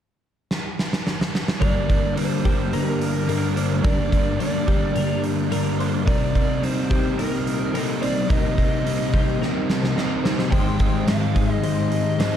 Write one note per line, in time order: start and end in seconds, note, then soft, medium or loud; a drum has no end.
0.51 snare medium
0.79 snare medium
0.93 snare medium
1.07 snare medium
1.21 snare medium
1.35 snare medium
1.48 snare loud
1.60 3.83 G2 medium
1.60 2.15 D3 medium
1.60 6.03 G3 medium
1.60 1.91 G3 loud
1.60 1.90 A#3 loud
1.60 6.03 D4 medium
1.60 1.88 D4 medium
1.60 6.03 A#4 medium
1.60 2.73 A#4 medium
1.60 2.16 D5 medium
1.60 kick loud
1.60 open hi-hat medium
1.88 2.16 G3 medium
1.88 2.18 A#3 medium
1.88 2.19 D4 medium
1.88 kick medium
1.88 open hi-hat soft
2.16 2.71 G2 medium
2.16 2.72 D3 medium
2.16 2.46 G3 medium
2.16 2.45 A#3 medium
2.16 2.43 D4 medium
2.16 2.74 C5 loud
2.16 open hi-hat medium
2.43 3.28 G3 medium
2.43 3.29 A#3 medium
2.43 3.29 D4 medium
2.43 4.68 G4 medium
2.43 kick medium
2.43 open hi-hat medium
2.48 2.73 D3 medium
2.72 3.26 G2 medium
2.72 3.28 D3 medium
2.72 3.31 G3 loud
2.72 3.88 A#4 medium
2.72 3.29 A#4 medium
2.72 open hi-hat medium
3.02 open hi-hat medium
3.27 3.82 G2 medium
3.27 3.84 D3 medium
3.27 3.59 G3 medium
3.27 3.57 A#3 medium
3.27 3.54 D4 medium
3.27 3.56 A#4 medium
3.27 open hi-hat medium
3.56 3.85 G3 medium
3.56 3.86 A#3 medium
3.56 3.86 D4 medium
3.56 3.84 C5 medium
3.56 open hi-hat medium
3.84 4.40 G2 medium
3.84 4.38 D3 medium
3.84 4.14 G3 loud
3.84 4.13 A#3 medium
3.84 4.10 D4 medium
3.84 4.96 A#4 medium
3.84 4.39 D5 medium
3.84 kick loud
3.84 open hi-hat medium
4.12 4.40 G3 soft
4.12 4.41 A#3 medium
4.12 4.42 D4 medium
4.12 kick medium
4.12 open hi-hat medium
4.39 4.93 G2 medium
4.39 4.96 D3 medium
4.39 4.70 G3 medium
4.39 4.68 A#3 medium
4.39 4.66 D4 medium
4.39 5.20 D5 medium
4.39 open hi-hat medium
4.67 4.96 D3 medium
4.67 5.51 G3 medium
4.67 5.51 A#3 medium
4.67 5.52 D4 medium
4.67 6.91 G4 medium
4.67 kick medium
4.67 open hi-hat soft
4.95 5.50 G2 medium
4.95 5.52 D3 medium
4.95 5.54 G3 medium
4.95 5.51 A#4 medium
4.95 open hi-hat medium
5.24 open hi-hat soft
5.49 6.05 G2 medium
5.49 6.05 D3 medium
5.49 5.81 G3 medium
5.49 5.80 A#3 medium
5.49 5.77 D4 medium
5.49 5.79 A#4 medium
5.49 open hi-hat medium
5.78 6.08 G3 medium
5.78 6.09 A#3 medium
5.78 6.05 D4 medium
5.78 6.07 C5 medium
5.78 open hi-hat soft
6.07 6.61 C3 medium
6.07 6.37 G3 medium
6.07 10.49 A#3 medium
6.07 6.36 C4 loud
6.07 10.49 D#4 medium
6.07 6.34 D#4 loud
6.07 7.18 A#4 medium
6.07 12.37 C5 medium
6.07 6.64 D5 medium
6.07 kick loud
6.07 open hi-hat medium
6.35 6.62 G3 medium
6.35 6.64 C4 medium
6.35 6.64 D#4 medium
6.35 kick medium
6.35 open hi-hat soft
6.61 7.73 C3 medium
6.61 6.93 G3 medium
6.61 6.91 C4 medium
6.61 6.90 D#4 medium
6.61 7.15 C5 medium
6.61 open hi-hat medium
6.90 7.75 G3 medium
6.90 7.76 C4 medium
6.90 7.76 D#4 medium
6.90 9.14 G4 medium
6.90 kick medium
6.90 open hi-hat medium
7.18 7.72 C3 medium
7.18 7.75 G3 loud
7.18 7.77 C4 loud
7.18 7.73 A#4 medium
7.18 7.78 A#4 medium
7.18 open hi-hat medium
7.47 open hi-hat medium
7.74 8.28 C3 medium
7.74 8.04 G3 medium
7.74 8.03 C4 medium
7.74 8.01 D#4 medium
7.74 8.01 A#4 medium
7.74 open hi-hat medium
7.78 8.05 A4 medium
8.01 8.30 G3 medium
8.01 8.31 C4 medium
8.01 8.32 D#4 medium
8.01 8.29 C5 medium
8.01 8.30 D5 loud
8.01 open hi-hat soft
8.29 8.83 C3 medium
8.29 8.60 G3 medium
8.29 8.59 C4 medium
8.29 8.57 D#4 loud
8.29 8.85 A#4 medium
8.29 10.21 D#5 loud
8.29 kick loud
8.29 open hi-hat medium
8.57 8.86 G3 soft
8.57 8.86 C4 medium
8.57 8.88 D#4 medium
8.57 kick medium
8.57 open hi-hat soft
8.84 9.41 C3 medium
8.84 9.15 G3 medium
8.84 9.13 C4 medium
8.84 9.11 D#4 medium
8.84 open hi-hat medium
9.12 9.96 G3 medium
9.12 9.98 C4 medium
9.12 9.98 D#4 medium
9.12 11.39 G4 medium
9.12 kick medium
9.12 open hi-hat soft
9.40 9.95 C3 medium
9.40 9.98 G3 medium
9.40 9.99 C4 medium
9.40 9.96 A#4 medium
9.40 snare soft
9.70 snare medium
9.84 snare medium
9.96 10.50 C3 medium
9.96 10.26 G3 medium
9.96 10.25 C4 medium
9.96 10.23 D#4 medium
9.96 10.24 A#4 medium
9.96 snare medium
10.24 10.53 G3 medium
10.24 10.53 C4 medium
10.24 10.54 D#4 medium
10.24 10.52 C5 medium
10.24 snare medium
10.39 snare medium
10.51 12.37 G#2 medium
10.51 11.05 D#3 medium
10.51 10.82 G#3 medium
10.51 12.37 G#3 medium
10.51 10.80 C4 medium
10.51 10.78 D#4 loud
10.51 12.37 G4 medium
10.51 11.64 C5 medium
10.51 11.07 G5 medium
10.51 kick loud
10.51 open hi-hat medium
10.79 11.07 G#3 medium
10.79 11.09 C4 medium
10.79 11.09 D#4 medium
10.79 kick medium
10.79 open hi-hat soft
11.06 11.62 G#2 medium
11.06 11.63 D#3 medium
11.06 11.38 G#3 medium
11.06 11.36 C4 medium
11.06 11.35 D#4 medium
11.06 11.52 F5 loud
11.06 snare loud
11.06 open hi-hat medium
11.35 11.63 D#3 medium
11.35 12.19 G#3 medium
11.35 12.20 C4 medium
11.35 12.21 D#4 medium
11.35 12.37 G#4 medium
11.35 kick medium
11.35 open hi-hat soft
11.52 11.63 D#5 loud
11.62 12.17 G#2 medium
11.62 12.19 D#3 medium
11.62 12.20 G#3 medium
11.62 12.19 C5 medium
11.62 12.37 D#5 medium
11.62 open hi-hat medium
11.92 open hi-hat soft
12.18 12.37 G#2 medium
12.18 12.37 D#3 medium
12.18 12.37 G#3 medium
12.18 12.37 C4 medium
12.18 12.37 D#4 medium
12.18 12.37 C5 medium
12.18 snare loud
12.18 open hi-hat medium